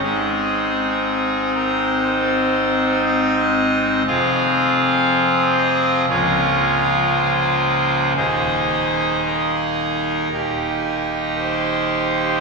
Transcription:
<<
  \new Staff \with { instrumentName = "Pipe organ" } { \time 4/4 \key aes \major \tempo 4 = 58 aes'4. bes'8 c''4 ees''4 | f''4. ees''8 des''4 c''4 | c''4 bes'2 c''4 | }
  \new Staff \with { instrumentName = "Pipe organ" } { \time 4/4 \key aes \major <aes,, aes, c' ees'>1 | <f,, f, c' f' aes'>2 <des,, des, bes f' aes'>2 | <ees,, ees, bes ees' aes'>2 <ees,, ees, bes ees' g'>2 | }
>>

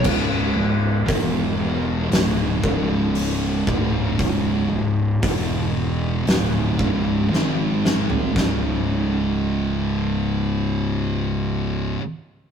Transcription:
<<
  \new Staff \with { instrumentName = "Distorted electric guitar" } { \clef bass \time 4/4 \key e \lydian \tempo 4 = 58 <cis, gis, cis>8 <cis, gis,>8 <e, b, e>4 <d, a, d>8 <cis, gis, cis>4 <d, a, d>8 | <cis, gis, cis>8 <cis, gis,>8 <e, b, e>4 <d, a, d>8 <cis, gis, cis>8 <gis, dis gis>4 | <cis, gis, cis>1 | }
  \new Staff \with { instrumentName = "Distorted electric guitar" } { \clef bass \time 4/4 \key e \lydian <cis, gis, cis>8 <cis, gis,>8 <e, b, e>4 <d, a, d>8 <cis, gis, cis>4 <d, a, d>8 | <cis, gis, cis>8 <cis, gis,>8 <e, b, e>4 <d, a, d>8 <cis, gis, cis>8 <gis, dis gis>4 | <cis, gis, cis>1 | }
  \new Staff \with { instrumentName = "Fingered electric bass" } { \clef bass \time 4/4 \key e \lydian cis,,8 cis,,8 e,,4 d,,8 cis,,4 d,,8 | cis,,8 cis,,8 e,,4 d,,8 cis,,8 gis,,4 | cis,,1 | }
  \new DrumStaff \with { instrumentName = "Drums" } \drummode { \time 4/4 <cymc bd>4 <hho bd>4 <hho sn>8 bd8 hho8 bd8 | <hho bd>4 <hho bd>4 <hho sn>8 bd8 sn8 sn16 tomfh16 | <bd sn>4 r4 r4 r4 | }
>>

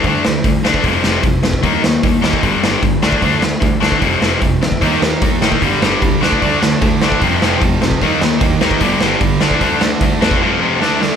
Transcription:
<<
  \new Staff \with { instrumentName = "Distorted electric guitar" } { \clef bass \time 4/4 \key d \phrygian \tempo 4 = 150 r1 | r1 | r1 | <ees bes ees'>2 <g, d g>4. <d a d'>8~ |
<d a d'>2 <f, c f>2 | <ees bes ees'>2 <g, d g>4. <d a d'>8~ | <d a d'>2 <f, c f>4 <d a d'>4 | }
  \new Staff \with { instrumentName = "Distorted electric guitar" } { \clef bass \time 4/4 \key d \phrygian <d a d'>8 <d a>8 <d a>8 <d a d'>8 <f, c f>8 <f, c f>8 <f, c>8 <f, c>8 | <ees bes ees'>8 <ees bes>8 <ees bes>8 <ees bes ees'>8 <g, d g>8 <g, d g>8 <g, d>8 <d a d'>8 | <d a d'>8 <d a>8 <d a>8 <d a d'>8 <f, c f>8 <f, c f>8 <f, c>8 <f, c>8 | <ees bes ees'>8 <ees bes>8 <ees bes>8 <ees bes ees'>8 <g, d g>8 <g, d g>8 <g, d>8 <d a d'>8 |
<d a d'>8 <d a>8 <d a>8 <d a d'>8 <f, c f>8 <f, c f>8 <f, c>8 <f, c>8 | <ees bes ees'>8 <ees bes>8 <ees bes>8 <ees bes ees'>8 <g, d g>8 <g, d g>8 <g, d>8 <d a d'>8 | <d a d'>8 <d a>8 <d a>8 <d a d'>8 <f, c f>8 <f, c f>8 <d a d'>8 <d a>8 | }
  \new Staff \with { instrumentName = "Distorted electric guitar" } { \clef bass \time 4/4 \key d \phrygian <d a d'>8 <d a>8 <d a>8 <d a d'>8 <f, c f>8 <f, c f>8 <f, c>8 <f, c>8 | <ees bes ees'>8 <ees bes>8 <ees bes>8 <ees bes ees'>8 <g, d g>8 <g, d g>8 <g, d>8 <d a d'>8 | <d a d'>8 <d a>8 <d a>8 <d a d'>8 <f, c f>8 <f, c f>8 <f, c>8 <f, c>8 | <ees bes ees'>8 <ees bes>8 <ees bes>8 <ees bes ees'>8 <g, d g>8 <g, d g>8 <g, d>8 <d a d'>8 |
<d a d'>8 <d a>8 <d a>8 <d a d'>8 <f, c f>8 <f, c f>8 <f, c>8 <f, c>8 | <ees bes ees'>8 <ees bes>8 <ees bes>8 <ees bes ees'>8 <g, d g>8 <g, d g>8 <g, d>8 <d a d'>8 | <d a d'>8 <d a>8 <d a>8 <d a d'>8 <f, c f>8 <f, c f>8 <d a d'>8 <d a>8 | }
  \new Staff \with { instrumentName = "Picked electric bass" } { \clef bass \time 4/4 \key d \phrygian d,8 d,8 d,8 d,8 f,,8 f,,8 f,,8 f,,8 | ees,8 ees,8 ees,8 ees,8 g,,8 g,,8 g,,8 d,8 | d,8 d,8 d,8 d,8 f,,8 f,,8 f,,8 d,8 | ees,8 ees,8 ees,8 a,8 g,,8 g,,8 c,8 d,8 |
d,8 d,8 d,8 d,8 f,,8 f,,8 f,,8 f,,8 | ees,8 ees,8 ees,8 ees,8 g,,8 g,,8 g,,8 d,8 | d,8 d,8 d,8 e,8 r2 | }
  \new DrumStaff \with { instrumentName = "Drums" } \drummode { \time 4/4 <hho bd>8 sn8 <hho bd>8 sn16 bd16 <hho bd>8 sn8 <hho bd>8 sn16 bd16 | <hho bd>8 sn8 <hho bd>8 sn16 bd16 <hho bd>8 sn8 <hho bd>8 sn16 bd16 | <hho bd>8 sn8 <hho bd>8 sn16 bd16 <hho bd>8 sn8 <hho bd>8 sn16 bd16 | <hho bd>8 sn8 <hho bd>8 sn16 bd16 <hho bd>8 sn8 <hho bd>8 sn16 bd16 |
<hho bd>8 sn8 <hho bd>8 sn16 bd16 <hho bd>8 sn8 <hho bd>8 sn16 bd16 | <hho bd>8 sn8 <hho bd>8 sn16 bd16 <hho bd>8 sn8 <hho bd>8 sn16 bd16 | <hho bd>8 sn8 <hho bd>8 sn16 bd16 r4 sn8 sn8 | }
>>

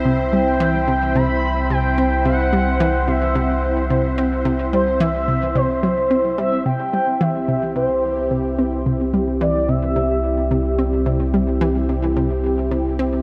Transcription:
<<
  \new Staff \with { instrumentName = "Analog synth lead" } { \time 4/4 \key c \major \tempo 4 = 109 r8 g''4. b''4 g''4 | fis''4. e''4 r4. | r8 c''8 e''4 c''4. e''8 | g''4 e''4 c''4. r8 |
r4 d''8 e''2 r8 | r1 | }
  \new Staff \with { instrumentName = "Synth texture" } { \time 4/4 \key c \major e''1~ | e''1~ | e''1 | r1 |
r1 | r1 | }
  \new Staff \with { instrumentName = "Analog synth pad" } { \time 4/4 \key c \major <c' e' c''>1~ | <c' e' c''>1~ | <c' e' c''>1 | <c' e' g'>1~ |
<c' e' g'>1~ | <c' e' g'>1 | }
  \new Staff \with { instrumentName = "Synth arpeggio sound" } { \clef bass \time 4/4 \key c \major c8 g8 e8 c8 c8 r8 c8 c'8 | c8 g8 e8 c8 c8 r8 c8 c'8 | c8 g8 e8 c8 c8 fis8 c'8 g8 | c8 g8 e8 c8 c8 r8 c8 c'8 |
c8 g8 e8 c8 c8 r8 c8 c'8 | c8 g8 e8 c8 c8 r8 c8 c'8 | }
  \new Staff \with { instrumentName = "Analog synth bass" } { \clef bass \time 4/4 \key c \major c,1~ | c,1~ | c,1 | c,1~ |
c,1~ | c,1 | }
>>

